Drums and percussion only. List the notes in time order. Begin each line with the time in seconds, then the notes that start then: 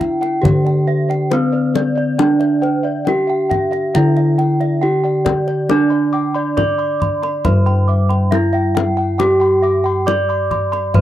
0.01 kendang low
0.23 kendang slap
0.45 kendang low
0.66 kendang slap
1.11 kendang slap
1.31 kendang high
1.75 kendang high
2.19 kendang high
2.41 kendang slap
2.63 kendang slap
3.07 kendang slap, kendang high
3.51 kendang slap, kendang low
3.73 kendang slap
3.95 kendang low
4.17 kendang slap
4.39 kendang slap
4.61 kendang slap
5.26 kendang high, kendang low
5.48 kendang slap
5.69 kendang high
6.58 kendang slap, kendang high, kendang low
7.02 kendang low
7.23 kendang slap
7.45 kendang low
7.67 kendang slap
8.10 kendang slap
8.32 kendang high
8.77 kendang high
9.20 kendang high
10.08 kendang slap, kendang high
10.51 kendang low
10.73 kendang slap
10.94 kendang low